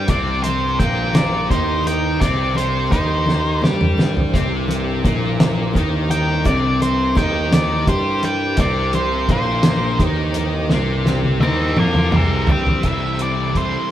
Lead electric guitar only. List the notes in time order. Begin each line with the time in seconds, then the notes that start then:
0.10 D5
0.43 C5
0.79 G5
1.15 D5
1.51 C5
1.87 G5
2.21 D5
2.57 C5
2.92 C5
6.11 G5
6.46 D5
6.82 C5
7.17 G5
7.53 D5
7.89 C5
8.25 G5
8.60 D5
8.95 C5
9.32 C5
11.41 E5 D6
11.79 D5 C6
12.16 A#4 A5
12.52 C5 G5
12.85 E5
13.22 D5
13.57 C5